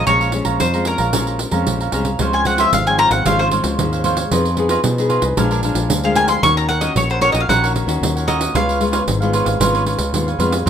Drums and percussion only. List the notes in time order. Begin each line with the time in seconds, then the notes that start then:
0.07 pandeiro
0.21 pandeiro
0.32 pandeiro
0.45 pandeiro
0.60 pandeiro
0.74 pandeiro
0.85 pandeiro
0.98 pandeiro
1.13 pandeiro
1.27 pandeiro
1.39 pandeiro
1.51 pandeiro
1.67 pandeiro
1.81 pandeiro
1.92 pandeiro
2.05 pandeiro
2.19 pandeiro
2.33 pandeiro
2.45 pandeiro
2.58 pandeiro
2.73 pandeiro
2.87 pandeiro
2.98 pandeiro
3.11 pandeiro
3.26 pandeiro
3.40 pandeiro
3.51 pandeiro
3.64 pandeiro
3.79 pandeiro
3.93 pandeiro
4.04 pandeiro
4.17 pandeiro
4.32 pandeiro
4.45 pandeiro
4.57 pandeiro
4.69 pandeiro
4.84 pandeiro
4.98 pandeiro
5.10 pandeiro
5.22 pandeiro
5.37 pandeiro
5.51 pandeiro
5.63 pandeiro
5.75 pandeiro
5.90 pandeiro
6.04 pandeiro
6.15 pandeiro
6.28 pandeiro
6.43 pandeiro
6.57 pandeiro
6.69 pandeiro
6.81 pandeiro
6.96 pandeiro
7.10 pandeiro
7.21 pandeiro
7.35 pandeiro
7.50 pandeiro
7.64 pandeiro
7.76 pandeiro
7.89 pandeiro
8.03 pandeiro
8.17 pandeiro
8.28 pandeiro
8.41 pandeiro
8.55 pandeiro
8.69 pandeiro
8.81 pandeiro
8.93 pandeiro
9.08 pandeiro
9.22 pandeiro
9.33 pandeiro
9.46 pandeiro
9.61 pandeiro
9.75 pandeiro
9.86 pandeiro
9.99 pandeiro
10.14 pandeiro
10.28 pandeiro
10.40 pandeiro
10.52 pandeiro